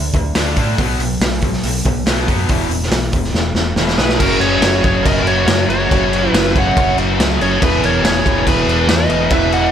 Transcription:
Already playing: D3 A3
0.13 D2 D3 A3, kick, open hi-hat
0.35 D2 D3 A3 D4, snare, open hi-hat
0.56 A2 D3 A3 D4, kick, open hi-hat
0.78 B1 B2 F#3, kick, open hi-hat
0.82 B3
0.99 B1 B2 F#3, open hi-hat
1.19 B1 B2 F#3, snare, open hi-hat
1.42 B2 F#3, kick, open hi-hat
1.53 snare
1.63 B1 B2 F#3, open hi-hat
1.85 B1 B2 F#3, kick, open hi-hat
2.06 B1 B2 F#3 B3, snare, open hi-hat
2.27 F#2 B2 F#3 B3, kick, open hi-hat
2.48 E1 E2 B2 E3, kick, open hi-hat
2.69 E1 E2 B2, open hi-hat
2.82 snare
2.90 B1 E2 B2, snare, open hi-hat
2.94 B2
3.12 E1 E2 B2, kick, open hi-hat
3.16 E2
3.24 snare
3.33 E1 E2 B2, snare
3.55 E1 E2 B2, snare
3.76 E1 E2 B2 E3, snare
3.88 snare
3.97 B1 E2 B2 E3 G#4 B4, snare
4.09 snare
4.19 F#1 F#2 C#3 F#3 F#4 A#4, kick, crash
4.23 F#3
4.40 F#1 G#4 C#5, crash
4.61 F#1 F#2 C#3 F#3 C#5, snare, crash
4.65 F#4
4.83 F#1 F#2 C#3 F#3 G#4 C#5, kick, crash
4.88 F#2
5.04 F#1 F#2 C#3 F#3 A#4 D#5, kick, crash
5.18 F#4 A#4
5.24 F#1 C#5, crash
5.30 F#4
5.46 F#2, snare, crash
5.50 F#2 C#3 F#3
5.67 F#1 F#4 C#5, crash
5.71 F#2 C#3 F#3
5.90 F#1 F#2 C#3 F#3, kick, crash
6.13 crash
6.28 E4
6.33 F#1 F#2 C#3 F#3 B4, snare, crash
6.54 F#2 C#3 F#3 C#5, kick, crash
6.59 F#5
6.76 F#1 F#2 C#3 F#3, kick, crash
6.97 F#1, crash
7.18 C#2 F#2 C#3 F#3, snare, crash
7.38 F#1 F#2 G#4, crash
7.42 C#3 F#3 C#5
7.61 E1 E2 B2 E3 G#4 B4, kick, crash
7.82 E1 A#4 C#5, crash
8.03 E1 E2 B2 E3 G#4 C#5, snare, crash
8.23 E1 E2 B2 E3, kick, crash
8.46 E1 E2 B2 E3 G#4 B4, kick, crash
8.67 E1, crash
8.87 E2 B2 E3 B4 D#5, snare, crash
9.09 E1 E2 B2 E3, crash
9.30 E1 E2 B2 E3 B4 E5, kick, crash
9.52 D#5 F#5, crash

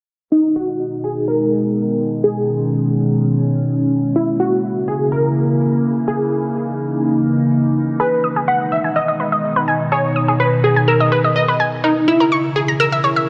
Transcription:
0.32 B2 D#3 G#3 D#4
0.56 F#4
1.04 G#4
1.28 A#4
2.24 C#4 G#4
4.16 C#3 E3 A#3 E4
4.40 F#4
4.88 G#4
5.12 A#4
6.08 D#4 G#4
8.00 B2 D#3 G#3 G#4 B4
8.24 D#6
8.36 G#4
8.48 F#5 B5
8.72 E5
8.84 G#5
8.96 D#5 E6
9.08 D#5
9.20 B4
9.32 D#5
9.56 B4
9.68 G#5
9.92 G#4 C#5
10.16 D#6
10.28 G#4
10.40 B4 B5
10.64 G#4
10.76 G#5
10.88 A#4 E6
11.00 D#5
11.12 B4
11.24 D#5
11.36 D#5
11.48 B4
11.60 G#5
11.84 C#3 E3 D#4 E4 A#4
12.08 E4 E6
12.20 A#4
12.32 C#6
12.56 G#4
12.68 A#5
12.80 A#4 E6
12.92 E5
13.04 C#5
13.16 E5

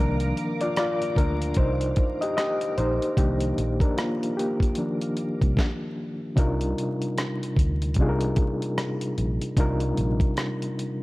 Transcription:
Already playing: C2 D#3 F3 A#4 F5 A#5 D6
0.00 A#3 D4
0.20 closed hi-hat
0.37 closed hi-hat
0.61 F4 D5, closed hi-hat
0.77 F4 D5, cross-stick, closed hi-hat
1.02 closed hi-hat
1.16 D2 D4 A#4, kick, closed hi-hat
1.42 closed hi-hat
1.54 C2 C5, kick, closed hi-hat
1.59 D#4
1.81 closed hi-hat
1.96 kick, closed hi-hat
2.21 G4 D#5, closed hi-hat
2.37 G4 D#5, cross-stick, closed hi-hat
2.61 closed hi-hat
2.78 A#1 D#4 C5, closed hi-hat
3.02 closed hi-hat
3.17 C2 D#3 F3 A#3 D4 G4, kick, closed hi-hat
3.40 closed hi-hat
3.58 A#1, closed hi-hat
3.80 D4 A#4, kick, closed hi-hat
3.97 A#3 F4, cross-stick, closed hi-hat
4.23 closed hi-hat
4.37 A#3 G4, closed hi-hat
4.60 kick, closed hi-hat
4.75 D#3 F3 A#3 D4, closed hi-hat
5.01 closed hi-hat
5.17 closed hi-hat
5.41 C2, kick, closed hi-hat
5.57 kick, snare
6.36 C2 C3 G3 D4 D#4 F4 A#4, kick, closed hi-hat
6.61 closed hi-hat
6.78 closed hi-hat
7.02 closed hi-hat
7.18 cross-stick, closed hi-hat
7.43 closed hi-hat
7.57 D2, kick, closed hi-hat
7.82 closed hi-hat
7.94 C2, kick, closed hi-hat
7.99 C3 G3 D4 D#4 F4 G#4
8.09 A#4
8.21 closed hi-hat
8.36 kick, closed hi-hat
8.62 closed hi-hat
8.78 cross-stick, closed hi-hat
9.01 closed hi-hat
9.18 A#1, closed hi-hat
9.42 closed hi-hat
9.57 C2 C3 G3 D4 D#4 F4 A#4, kick, closed hi-hat
9.80 closed hi-hat
9.97 A#1, closed hi-hat
10.20 kick, closed hi-hat
10.37 cross-stick, closed hi-hat
10.62 closed hi-hat
10.79 closed hi-hat

